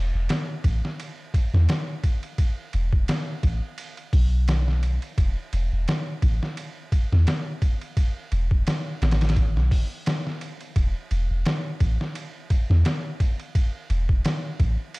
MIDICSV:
0, 0, Header, 1, 3, 480
1, 0, Start_track
1, 0, Tempo, 697674
1, 1643, Time_signature, 4, 2, 24, 8
1, 10315, End_track
2, 0, Start_track
2, 0, Title_t, "808-style bass"
2, 0, Program_c, 0, 38
2, 0, Note_on_c, 0, 28, 84
2, 83, Note_off_c, 0, 28, 0
2, 99, Note_on_c, 0, 28, 73
2, 192, Note_off_c, 0, 28, 0
2, 444, Note_on_c, 0, 33, 73
2, 561, Note_off_c, 0, 33, 0
2, 1057, Note_on_c, 0, 40, 83
2, 1151, Note_off_c, 0, 40, 0
2, 1886, Note_on_c, 0, 28, 86
2, 2002, Note_off_c, 0, 28, 0
2, 2014, Note_on_c, 0, 28, 75
2, 2109, Note_off_c, 0, 28, 0
2, 2362, Note_on_c, 0, 33, 80
2, 2480, Note_off_c, 0, 33, 0
2, 2843, Note_on_c, 0, 35, 70
2, 3431, Note_off_c, 0, 35, 0
2, 3564, Note_on_c, 0, 28, 99
2, 3681, Note_off_c, 0, 28, 0
2, 3806, Note_on_c, 0, 28, 91
2, 3922, Note_off_c, 0, 28, 0
2, 3940, Note_on_c, 0, 28, 73
2, 4032, Note_off_c, 0, 28, 0
2, 4284, Note_on_c, 0, 33, 76
2, 4401, Note_off_c, 0, 33, 0
2, 4902, Note_on_c, 0, 40, 83
2, 4993, Note_off_c, 0, 40, 0
2, 5725, Note_on_c, 0, 28, 92
2, 5841, Note_off_c, 0, 28, 0
2, 5857, Note_on_c, 0, 28, 77
2, 5950, Note_off_c, 0, 28, 0
2, 6206, Note_on_c, 0, 33, 74
2, 6580, Note_on_c, 0, 35, 106
2, 6590, Note_off_c, 0, 33, 0
2, 6672, Note_off_c, 0, 35, 0
2, 7404, Note_on_c, 0, 28, 93
2, 7521, Note_off_c, 0, 28, 0
2, 7645, Note_on_c, 0, 28, 95
2, 7761, Note_off_c, 0, 28, 0
2, 7777, Note_on_c, 0, 28, 76
2, 7871, Note_off_c, 0, 28, 0
2, 8125, Note_on_c, 0, 33, 79
2, 8241, Note_off_c, 0, 33, 0
2, 8737, Note_on_c, 0, 40, 94
2, 8830, Note_off_c, 0, 40, 0
2, 9564, Note_on_c, 0, 28, 96
2, 9681, Note_off_c, 0, 28, 0
2, 9697, Note_on_c, 0, 28, 79
2, 9790, Note_off_c, 0, 28, 0
2, 10045, Note_on_c, 0, 33, 80
2, 10161, Note_off_c, 0, 33, 0
2, 10315, End_track
3, 0, Start_track
3, 0, Title_t, "Drums"
3, 201, Note_on_c, 9, 51, 86
3, 208, Note_on_c, 9, 38, 106
3, 270, Note_off_c, 9, 51, 0
3, 276, Note_off_c, 9, 38, 0
3, 441, Note_on_c, 9, 36, 91
3, 442, Note_on_c, 9, 51, 68
3, 510, Note_off_c, 9, 36, 0
3, 511, Note_off_c, 9, 51, 0
3, 584, Note_on_c, 9, 38, 46
3, 653, Note_off_c, 9, 38, 0
3, 685, Note_on_c, 9, 51, 80
3, 754, Note_off_c, 9, 51, 0
3, 921, Note_on_c, 9, 36, 90
3, 924, Note_on_c, 9, 51, 61
3, 990, Note_off_c, 9, 36, 0
3, 993, Note_off_c, 9, 51, 0
3, 1062, Note_on_c, 9, 38, 44
3, 1131, Note_off_c, 9, 38, 0
3, 1161, Note_on_c, 9, 51, 81
3, 1167, Note_on_c, 9, 38, 111
3, 1230, Note_off_c, 9, 51, 0
3, 1236, Note_off_c, 9, 38, 0
3, 1401, Note_on_c, 9, 36, 88
3, 1401, Note_on_c, 9, 51, 66
3, 1469, Note_off_c, 9, 36, 0
3, 1470, Note_off_c, 9, 51, 0
3, 1533, Note_on_c, 9, 51, 43
3, 1602, Note_off_c, 9, 51, 0
3, 1639, Note_on_c, 9, 51, 77
3, 1640, Note_on_c, 9, 36, 92
3, 1708, Note_off_c, 9, 36, 0
3, 1708, Note_off_c, 9, 51, 0
3, 1879, Note_on_c, 9, 51, 64
3, 1948, Note_off_c, 9, 51, 0
3, 2013, Note_on_c, 9, 36, 90
3, 2082, Note_off_c, 9, 36, 0
3, 2120, Note_on_c, 9, 51, 82
3, 2126, Note_on_c, 9, 38, 111
3, 2189, Note_off_c, 9, 51, 0
3, 2195, Note_off_c, 9, 38, 0
3, 2361, Note_on_c, 9, 36, 88
3, 2361, Note_on_c, 9, 51, 62
3, 2429, Note_off_c, 9, 36, 0
3, 2430, Note_off_c, 9, 51, 0
3, 2599, Note_on_c, 9, 51, 84
3, 2668, Note_off_c, 9, 51, 0
3, 2733, Note_on_c, 9, 51, 40
3, 2802, Note_off_c, 9, 51, 0
3, 2840, Note_on_c, 9, 36, 94
3, 2842, Note_on_c, 9, 46, 74
3, 2909, Note_off_c, 9, 36, 0
3, 2910, Note_off_c, 9, 46, 0
3, 3080, Note_on_c, 9, 51, 79
3, 3087, Note_on_c, 9, 38, 106
3, 3149, Note_off_c, 9, 51, 0
3, 3155, Note_off_c, 9, 38, 0
3, 3220, Note_on_c, 9, 38, 38
3, 3289, Note_off_c, 9, 38, 0
3, 3322, Note_on_c, 9, 51, 67
3, 3391, Note_off_c, 9, 51, 0
3, 3455, Note_on_c, 9, 51, 42
3, 3524, Note_off_c, 9, 51, 0
3, 3562, Note_on_c, 9, 36, 102
3, 3563, Note_on_c, 9, 51, 84
3, 3631, Note_off_c, 9, 36, 0
3, 3631, Note_off_c, 9, 51, 0
3, 3803, Note_on_c, 9, 51, 63
3, 3872, Note_off_c, 9, 51, 0
3, 4044, Note_on_c, 9, 51, 78
3, 4050, Note_on_c, 9, 38, 108
3, 4113, Note_off_c, 9, 51, 0
3, 4119, Note_off_c, 9, 38, 0
3, 4281, Note_on_c, 9, 51, 64
3, 4282, Note_on_c, 9, 36, 84
3, 4350, Note_off_c, 9, 36, 0
3, 4350, Note_off_c, 9, 51, 0
3, 4422, Note_on_c, 9, 38, 51
3, 4490, Note_off_c, 9, 38, 0
3, 4522, Note_on_c, 9, 51, 84
3, 4590, Note_off_c, 9, 51, 0
3, 4762, Note_on_c, 9, 36, 93
3, 4762, Note_on_c, 9, 51, 67
3, 4830, Note_off_c, 9, 36, 0
3, 4831, Note_off_c, 9, 51, 0
3, 4902, Note_on_c, 9, 38, 43
3, 4971, Note_off_c, 9, 38, 0
3, 5001, Note_on_c, 9, 51, 83
3, 5007, Note_on_c, 9, 38, 107
3, 5070, Note_off_c, 9, 51, 0
3, 5076, Note_off_c, 9, 38, 0
3, 5241, Note_on_c, 9, 51, 65
3, 5242, Note_on_c, 9, 36, 89
3, 5310, Note_off_c, 9, 36, 0
3, 5310, Note_off_c, 9, 51, 0
3, 5376, Note_on_c, 9, 51, 43
3, 5445, Note_off_c, 9, 51, 0
3, 5482, Note_on_c, 9, 36, 96
3, 5482, Note_on_c, 9, 51, 83
3, 5551, Note_off_c, 9, 36, 0
3, 5551, Note_off_c, 9, 51, 0
3, 5722, Note_on_c, 9, 51, 64
3, 5791, Note_off_c, 9, 51, 0
3, 5855, Note_on_c, 9, 36, 92
3, 5924, Note_off_c, 9, 36, 0
3, 5963, Note_on_c, 9, 51, 85
3, 5969, Note_on_c, 9, 38, 108
3, 6032, Note_off_c, 9, 51, 0
3, 6038, Note_off_c, 9, 38, 0
3, 6205, Note_on_c, 9, 51, 66
3, 6211, Note_on_c, 9, 38, 88
3, 6270, Note_off_c, 9, 51, 0
3, 6270, Note_on_c, 9, 51, 61
3, 6276, Note_off_c, 9, 38, 0
3, 6276, Note_on_c, 9, 38, 86
3, 6337, Note_off_c, 9, 51, 0
3, 6337, Note_on_c, 9, 51, 60
3, 6343, Note_off_c, 9, 38, 0
3, 6343, Note_on_c, 9, 38, 79
3, 6390, Note_off_c, 9, 51, 0
3, 6390, Note_on_c, 9, 51, 59
3, 6397, Note_off_c, 9, 38, 0
3, 6397, Note_on_c, 9, 38, 78
3, 6442, Note_on_c, 9, 36, 79
3, 6443, Note_off_c, 9, 51, 0
3, 6443, Note_on_c, 9, 51, 55
3, 6465, Note_off_c, 9, 38, 0
3, 6511, Note_off_c, 9, 36, 0
3, 6512, Note_off_c, 9, 51, 0
3, 6584, Note_on_c, 9, 38, 46
3, 6653, Note_off_c, 9, 38, 0
3, 6683, Note_on_c, 9, 36, 91
3, 6686, Note_on_c, 9, 46, 79
3, 6752, Note_off_c, 9, 36, 0
3, 6755, Note_off_c, 9, 46, 0
3, 6923, Note_on_c, 9, 51, 78
3, 6929, Note_on_c, 9, 38, 113
3, 6992, Note_off_c, 9, 51, 0
3, 6998, Note_off_c, 9, 38, 0
3, 7064, Note_on_c, 9, 38, 38
3, 7132, Note_off_c, 9, 38, 0
3, 7164, Note_on_c, 9, 51, 69
3, 7233, Note_off_c, 9, 51, 0
3, 7297, Note_on_c, 9, 51, 42
3, 7366, Note_off_c, 9, 51, 0
3, 7402, Note_on_c, 9, 36, 104
3, 7402, Note_on_c, 9, 51, 83
3, 7471, Note_off_c, 9, 36, 0
3, 7471, Note_off_c, 9, 51, 0
3, 7643, Note_on_c, 9, 51, 66
3, 7712, Note_off_c, 9, 51, 0
3, 7881, Note_on_c, 9, 51, 81
3, 7887, Note_on_c, 9, 38, 119
3, 7950, Note_off_c, 9, 51, 0
3, 7956, Note_off_c, 9, 38, 0
3, 8121, Note_on_c, 9, 51, 65
3, 8122, Note_on_c, 9, 36, 92
3, 8190, Note_off_c, 9, 36, 0
3, 8190, Note_off_c, 9, 51, 0
3, 8262, Note_on_c, 9, 38, 52
3, 8331, Note_off_c, 9, 38, 0
3, 8362, Note_on_c, 9, 51, 83
3, 8431, Note_off_c, 9, 51, 0
3, 8602, Note_on_c, 9, 36, 93
3, 8602, Note_on_c, 9, 51, 63
3, 8670, Note_off_c, 9, 51, 0
3, 8671, Note_off_c, 9, 36, 0
3, 8743, Note_on_c, 9, 38, 43
3, 8812, Note_off_c, 9, 38, 0
3, 8841, Note_on_c, 9, 51, 81
3, 8847, Note_on_c, 9, 38, 111
3, 8910, Note_off_c, 9, 51, 0
3, 8916, Note_off_c, 9, 38, 0
3, 9082, Note_on_c, 9, 36, 90
3, 9083, Note_on_c, 9, 51, 63
3, 9151, Note_off_c, 9, 36, 0
3, 9152, Note_off_c, 9, 51, 0
3, 9216, Note_on_c, 9, 51, 41
3, 9285, Note_off_c, 9, 51, 0
3, 9323, Note_on_c, 9, 36, 102
3, 9324, Note_on_c, 9, 51, 78
3, 9391, Note_off_c, 9, 36, 0
3, 9392, Note_off_c, 9, 51, 0
3, 9563, Note_on_c, 9, 51, 67
3, 9632, Note_off_c, 9, 51, 0
3, 9695, Note_on_c, 9, 36, 91
3, 9764, Note_off_c, 9, 36, 0
3, 9802, Note_on_c, 9, 51, 80
3, 9808, Note_on_c, 9, 38, 112
3, 9871, Note_off_c, 9, 51, 0
3, 9877, Note_off_c, 9, 38, 0
3, 10042, Note_on_c, 9, 36, 93
3, 10042, Note_on_c, 9, 51, 66
3, 10111, Note_off_c, 9, 36, 0
3, 10111, Note_off_c, 9, 51, 0
3, 10282, Note_on_c, 9, 51, 88
3, 10315, Note_off_c, 9, 51, 0
3, 10315, End_track
0, 0, End_of_file